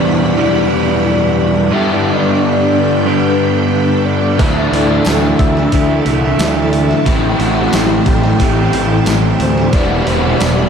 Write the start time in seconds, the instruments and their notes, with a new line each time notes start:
Already playing: overdriven electric guitar E2 B2 E3 G3 B3 E4, string machine E4 G4 F#5 B5
0.05 soft synth lead D5
0.37 overdriven electric guitar E3 G3 B3 E4
1.40 soft synth lead D5
1.71 overdriven electric guitar G2 D3 G3 B3 D4 G4, string machine D4 A4 G5 B5, soft synth lead E5
2.07 soft synth lead D5
2.41 soft synth lead D5
3.05 overdriven electric guitar G2 D3 G3 B3 D4, soft synth lead B4
4.05 soft synth lead D5
4.39 picked electric bass D2, overdriven electric guitar D3 E3 A3 D4 E4, soft synth lead E5, string machine E5 A5, kick, open hi-hat
4.72 picked electric bass D2, soft synth lead D5, open hi-hat
5.05 picked electric bass D2, soft synth lead E5, snare, open hi-hat, tambourine
5.39 picked electric bass D2, soft synth lead E5, kick, open hi-hat
5.57 snare
5.72 picked electric bass D2, overdriven electric guitar D3 E3 A3 E4, kick, open hi-hat
6.06 picked electric bass C2, open hi-hat
6.39 picked electric bass D2, snare, open hi-hat, tambourine
6.72 soft synth lead E5, open hi-hat
6.91 snare
7.06 picked electric bass A1, overdriven electric guitar A2 E3 A3 C4 E4, string machine G4 C5, soft synth lead G5, kick, open hi-hat
7.39 picked electric bass A1, soft synth lead F#5, open hi-hat
7.73 picked electric bass A1, soft synth lead G5, snare, open hi-hat, tambourine
8.06 picked electric bass A1, soft synth lead G5, kick, open hi-hat
8.24 snare
8.39 picked electric bass A1, overdriven electric guitar A2 E3 A3 C4 E4, kick, open hi-hat
8.73 picked electric bass A1, open hi-hat
9.06 picked electric bass A1, snare, open hi-hat, tambourine
9.40 picked electric bass D2, soft synth lead C5, open hi-hat
9.58 snare
9.73 picked electric bass E1, overdriven electric guitar E2 B2 E3 G3 B3 E4, string machine G4 F#5 B5, soft synth lead D5, kick, open hi-hat
10.07 picked electric bass E1, soft synth lead C5, open hi-hat
10.38 picked electric bass E1, soft synth lead D5, snare, open hi-hat, tambourine